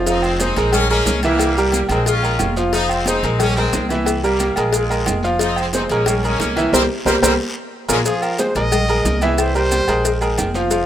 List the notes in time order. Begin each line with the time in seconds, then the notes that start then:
Already playing: F1
0.06 F3 C4 D#4 F4 F5, cowbell, high conga, long guiro, maracas
0.22 G#3 C4, high conga, low agogo, maracas
0.40 G#3 C4 D#4 G#4 C5, cowbell, high conga, low timbale, low agogo, short guiro, maracas
0.56 A#1 G#3 G#4 A#4, cowbell, short guiro, maracas
0.72 A#3 C#4, cowbell, high conga, low conga, low agogo, long guiro, maracas
0.89 G#3 A#3 C#4 G#4 A#4, high conga, low agogo, maracas
1.06 C2, cowbell, high conga, low timbale, short guiro, maracas
1.22 E3 G3 A#3 E4 E5, cowbell, high conga, low agogo, short guiro, maracas
1.39 cowbell, high conga, low agogo, long guiro, maracas
1.58 G3 G4 A#4, maracas
1.72 G3 A#3, cowbell, high conga, low timbale, low agogo, short guiro, maracas
1.89 A#1 G#3 C4 G#4 A#4, cowbell, high conga, low agogo, short guiro, maracas
2.06 C#4 F4, cowbell, high conga, long guiro, maracas
2.23 G#3 G#4 A#4, high conga, low agogo, maracas
2.39 F1, cowbell, high conga, low timbale, low agogo, short guiro, maracas
2.57 F3 F4 F5, short guiro, maracas
2.72 F3 C4 D#4 F4 F5, cowbell, high conga, long guiro, maracas
2.89 G#3 C4, high conga, low agogo, maracas
3.06 G#3 C4 D#4 G#4 C5, cowbell, high conga, low timbale, low agogo, short guiro, maracas
3.23 A#1 G#3 G#4 A#4, cowbell, short guiro, maracas
3.39 A#3 C#4, cowbell, high conga, low conga, low agogo, long guiro, maracas
3.56 G#3 C4 G#4 A#4, high conga, low agogo, maracas
3.73 C2, cowbell, high conga, low timbale, short guiro, maracas
3.89 E3 E4 E5, cowbell, high conga, low agogo, short guiro, maracas
4.06 cowbell, high conga, low agogo, long guiro, maracas
4.24 G3 A#3 G4 A#4, maracas
4.40 cowbell, high conga, low timbale, low agogo, short guiro, maracas
4.56 A#1 G#3 F4 G#4 A#4, cowbell, high conga, low agogo, short guiro, maracas
4.73 cowbell, high conga, long guiro, maracas
4.90 G#3 G#4 A#4, high conga, low agogo, maracas
5.06 F1, cowbell, high conga, low timbale, low agogo, short guiro, maracas
5.23 F3 F4 F5, short guiro, maracas
5.39 F3 C4 D#4 F4 F5, cowbell, high conga, long guiro, maracas
5.56 G#3 C4, high conga, low agogo, maracas
5.73 G#3 C4 D#4 G#4 C5, cowbell, high conga, low timbale, low agogo, short guiro, maracas
5.89 A#1 G#3 A#3 C#4 G#4 A#4, cowbell, short guiro, maracas
6.06 cowbell, high conga, low conga, low agogo, long guiro, maracas
6.23 G#3 A#3 C#4 G#4 A#4, high conga, low agogo, maracas
6.40 C2, cowbell, high conga, low timbale, short guiro, maracas
6.56 E3 E4 E5, cowbell, high conga, low agogo, short guiro, maracas
6.73 C2 G3 A#3 C4 G4 A#4 C5, cowbell, high conga, high timbale, long guiro, maracas
7.05 C2 G3 A#3 C4 G4 A#4 C5, cowbell, high conga, high timbale, long guiro, maracas
7.22 C2 G3 A#3 C4 G4 A#4 C5, cowbell, high conga, high timbale, long guiro, maracas
7.89 A#1 G#3 A#3 C#4 F4 G#4 A#4, cowbell, high conga, high timbale, long guiro, maracas
8.05 F3 F4 G#4 F5, cowbell, long guiro, maracas
8.22 A#4, high conga, low agogo, maracas
8.38 G#3 G#4 C5, cowbell, high conga, low timbale, low agogo, short guiro, maracas
8.55 A#1 G#3 G#4 A#4 D#5, cowbell, short guiro, maracas
8.72 cowbell, high conga, low conga, low agogo, long guiro, maracas
8.88 G#3 G#4 A#4, high conga, low conga, low agogo, maracas
9.05 C2, cowbell, high conga, low timbale, short guiro, maracas
9.22 E3 E4 G#4 E5, cowbell, high conga, low agogo, short guiro, maracas
9.38 C5, cowbell, low agogo, long guiro, maracas
9.55 G3 G4 A#4 C5, high conga, maracas
9.71 cowbell, high conga, low timbale, low agogo, short guiro, maracas
9.88 A#1 G#3 G#4 A#4, cowbell, high conga, low agogo, short guiro, maracas
10.05 cowbell, high conga, long guiro, maracas
10.21 G#3 G#4 A#4, high conga, low agogo, maracas
10.38 F1, cowbell, high conga, low timbale, low agogo, short guiro, maracas
10.54 F3 F4 F5, high conga, short guiro, maracas
10.71 F3 F4 F5, cowbell, high conga, long guiro, maracas